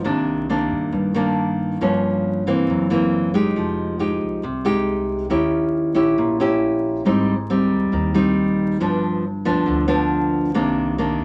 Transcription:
0.04 upright bass C2, nylon-string guitar C3 D#3 A#3 D4
0.50 nylon-string guitar D#3 A#3 D4
0.71 upright bass G2
0.92 upright bass G2, nylon-string guitar G2
1.14 nylon-string guitar D#3 A#3 D4
1.81 upright bass G1, nylon-string guitar G2 F3 A#3 C#4
2.46 upright bass C#2, nylon-string guitar E3 A#3 C4
2.68 upright bass F#1, nylon-string guitar F#2
2.90 nylon-string guitar E3 A#3 C4
3.34 nylon-string guitar G#3 D#4 G4
3.56 upright bass F1, nylon-string guitar F3
3.99 nylon-string guitar G#3 D#4 G4
4.21 upright bass C2
4.43 upright bass C2, nylon-string guitar C3
4.65 nylon-string guitar G#3 D#4 G4
5.30 upright bass D#2, nylon-string guitar D#3 C#4 E4 G4
5.95 upright bass A#1, nylon-string guitar C#4 E4 G4
6.18 upright bass A#1, nylon-string guitar A#2
6.40 nylon-string guitar C#4 E4 G4
7.05 upright bass G#1, nylon-string guitar G#2 G3 C4 D#4
7.50 nylon-string guitar G3 C4 D#4
7.70 upright bass D#2
7.92 upright bass D#2, nylon-string guitar D#3
8.14 nylon-string guitar G3 C4 D#4
8.80 upright bass G1, nylon-string guitar G2 F3 B3 D4
9.45 upright bass D2, nylon-string guitar F3 B3 D4
9.66 upright bass D2, nylon-string guitar D3
9.88 nylon-string guitar F3 B3 D4
10.54 upright bass C2, nylon-string guitar C3 D#3 A#3 D4
10.98 nylon-string guitar D#3 A#3 D4
11.20 upright bass G2

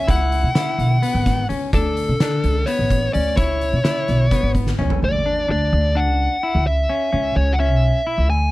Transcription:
0.07 upright bass C#2, clean electric guitar E4, lead electric guitar F#5, kick, closed hi-hat
0.32 closed hi-hat
0.43 upright bass C#3
0.55 clean electric guitar E4, snare, closed hi-hat
0.78 upright bass B1, closed hi-hat
1.03 clean electric guitar B3, closed hi-hat
1.15 upright bass G#1
1.26 kick, snare, closed hi-hat
1.49 upright bass C#2, clean electric guitar C#4, closed hi-hat
1.73 upright bass D2, clean electric guitar D4, lead electric guitar A4, kick, closed hi-hat
1.97 closed hi-hat
2.09 upright bass D3
2.20 clean electric guitar D4, snare, closed hi-hat
2.44 upright bass C#2, closed hi-hat
2.66 clean electric guitar B3, lead electric guitar C#5, closed hi-hat
2.79 upright bass A1
2.90 kick, closed hi-hat
3.13 upright bass D2, clean electric guitar C#4, lead electric guitar D5, closed hi-hat
3.37 upright bass C#2, clean electric guitar E4, lead electric guitar C#5, kick, closed hi-hat
3.61 closed hi-hat
3.73 upright bass C#3
3.84 clean electric guitar E4, snare, closed hi-hat
4.08 upright bass B1, snare, closed hi-hat
4.31 clean electric guitar B3, kick, snare, closed hi-hat
4.43 upright bass G#1
4.55 kick, closed hi-hat
4.67 snare
4.79 upright bass C#2, clean electric guitar C#4, mid tom
4.90 floor tom
5.02 upright bass D2, lead electric guitar D5
5.26 clean electric guitar D4
5.48 upright bass D2, clean electric guitar D4, lead electric guitar D5
5.72 upright bass D2
5.95 clean electric guitar D4, lead electric guitar F#5
6.07 upright bass C#2
6.43 clean electric guitar E4
6.55 upright bass D2
6.67 upright bass C#2, lead electric guitar E5
6.89 clean electric guitar C#4
7.13 upright bass C#2, clean electric guitar C#4
7.36 upright bass C#2, lead electric guitar C#5
7.53 lead electric guitar F#5
7.59 clean electric guitar C#4, lead electric guitar E5
7.72 upright bass B1
8.07 clean electric guitar E4
8.18 upright bass C#2
8.29 upright bass D2, lead electric guitar G#5

